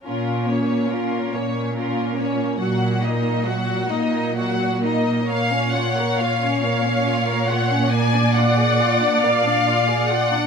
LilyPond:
<<
  \new Staff \with { instrumentName = "Violin section" } { \time 12/8 \key bes \minor \tempo 4. = 46 bes'8 des''8 bes'8 des''8 bes'8 des''8 ges''8 ees''8 ges''8 ees''8 ges''8 ees''8 | f''8 ges''8 f''8 f''4 ges''8 aes''8 ges''4 f''4 ges''8 | }
  \new Staff \with { instrumentName = "Violin section" } { \time 12/8 \key bes \minor << { f'8 des'8 f'8 des'8 f'8 des'8 ges'8 ees'8 ges'8 ees'8 ges'8 ees'8 | des''2. d''2. | } \\ { r1. | bes16 des'16 f'16 bes'16 f'16 des'16 bes16 des'16 f'16 bes'16 f'16 des'16 bes16 d'16 f'16 aes'16 f'16 d'16 bes16 d'16 f'16 aes'16 f'16 d'16 | } >> }
  \new Staff \with { instrumentName = "Viola section" } { \time 12/8 \key bes \minor des'8 bes8 des'8 bes8 des'8 bes8 ges8 bes8 ges8 bes8 ges8 bes8 | r2. d''2. | }
  \new Staff \with { instrumentName = "Cello section" } { \clef bass \time 12/8 \key bes \minor bes,4. bes,4. bes,4. bes,4. | bes,1. | }
>>